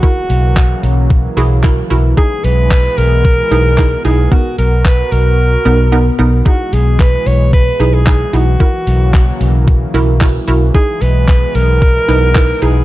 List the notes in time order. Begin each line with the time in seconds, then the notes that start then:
Already playing: F#4
0.03 C#3 E3 F#3 A#3 E4 F#4 A#4, kick, closed hi-hat
0.30 B1, open hi-hat
0.57 kick, clap, closed hi-hat
0.83 B1, open hi-hat
1.10 kick, closed hi-hat
1.37 B1 E4 F#4 G#4, open hi-hat
1.63 E4 F#4 A#4, kick, clap, closed hi-hat
1.90 B1 E4 F#4 A#4, open hi-hat
2.17 B2 G#3 B3 D#4 E4 G#4, kick, closed hi-hat
2.44 B1 B4, open hi-hat
2.71 kick, clap, closed hi-hat
2.98 B1 A#4, open hi-hat
3.25 kick, closed hi-hat
3.51 B1 D#4 E4 G#4, open hi-hat
3.78 D#4 E4 G#4, kick, clap, closed hi-hat
4.05 B1 D#4 E4 G#4, open hi-hat
4.31 B3 D#4 F#4 A#4, kick, closed hi-hat
4.58 B1 A#4, open hi-hat
4.85 B4, kick, clap, closed hi-hat
5.12 B1 A#4, open hi-hat
5.65 B1 B3 D#4 A#4
5.92 B3 D#4 A#4
6.19 B1 B3 D#4 A#4
6.45 E3 G#3 D#4 E4 F#4 G#4, kick, closed hi-hat
6.73 B1 G#4, open hi-hat
6.99 B4, kick, clap, closed hi-hat
7.26 B1 C#5, open hi-hat
7.53 B4, kick, closed hi-hat
7.80 B1 D#4 E4 G#4, open hi-hat
7.94 G#4
8.06 D#4 E4 G#4, kick, clap, closed hi-hat
8.33 B1 D#4 E4 F#4 G#4, open hi-hat
8.60 C#3 F#3 A#3 E4 F#4 A#4, kick, closed hi-hat
8.87 B1, open hi-hat
9.14 kick, clap, closed hi-hat
9.41 B1, open hi-hat
9.68 kick, closed hi-hat
9.94 B1 E4 F#4 A#4, open hi-hat
10.21 E4 F#4 A#4, kick, clap, closed hi-hat
10.48 B1 E4 F#4 A#4, open hi-hat
10.74 B2 G#3 B3 D#4 E4 G#4, kick, closed hi-hat
11.01 B1 B4, open hi-hat
11.28 kick, clap, closed hi-hat
11.55 B1 A#4, open hi-hat
11.82 kick, closed hi-hat
12.08 B1 D#4 E4 B4, open hi-hat
12.35 D#4 E4 B4, kick, clap, closed hi-hat
12.62 B1 D#4 E4 G#4, open hi-hat